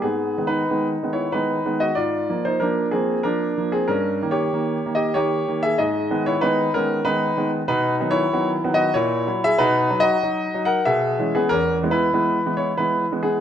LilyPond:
<<
  \new Staff \with { instrumentName = "Grand piano" } { \time 3/4 \key gis \minor \tempo 4 = 94 \tuplet 3/2 { <b gis'>4 <dis' b'>8~ <dis' b'>4 <e' cis''>8 } <dis' b'>8. <fis' dis''>16 | <eis' d''>8. <dis' bis'>16 <d' ais'>8 <bis gis'>8 <d' ais'>8. <bis gis'>16 | \tuplet 3/2 { <cis' ais'>4 <g' cis''>8~ <g' cis''>4 <g' dis''>8 } <g' cis''>8. <gis' e''>16 | <gis' dis''>8. <e' cis''>16 <dis' b'>8 <cis' ais'>8 <dis' b'>8. r16 |
\key b \major \tuplet 3/2 { <dis' b'>4 <e' cis''>8~ <e' cis''>4 <fis' dis''>8 } <e' cis''>8. <gis' e''>16 | \tuplet 3/2 { <dis' b'>4 <fis' dis''>8~ <fis' dis''>4 <ais' fis''>8 } <gis' e''>8. <b gis'>16 | \tuplet 3/2 { <cis' ais'>4 <e' b'>8~ <e' b'>4 <e' cis''>8 <e' b'>4 <b gis'>8 } | }
  \new Staff \with { instrumentName = "Grand piano" } { \clef bass \time 3/4 \key gis \minor gis,8 <dis gis b>8 <dis gis b>8 <dis gis b>8 <dis gis b>8 <dis gis b>8 | gis,8 <eis ais>8 <eis ais>8 <eis ais>8 <eis ais>8 <eis ais>8 | g,8 <dis ais>8 <dis ais>8 <dis ais>8 <dis ais>8 <dis ais>8 | gis,8 <dis gis b>8 <dis gis b>8 <dis gis b>8 <dis gis b>8 <dis gis b>8 |
\key b \major b,8 <dis fis b>8 <dis fis b>8 <dis fis b>8 ais,8 <fis e'>8 | b,8 <fis dis'>8 <fis dis'>8 <fis dis'>8 b,8 <e gis cis'>8 | e,8 <e gis b>8 <e gis b>8 <e gis b>8 <e gis b>8 <e gis b>8 | }
>>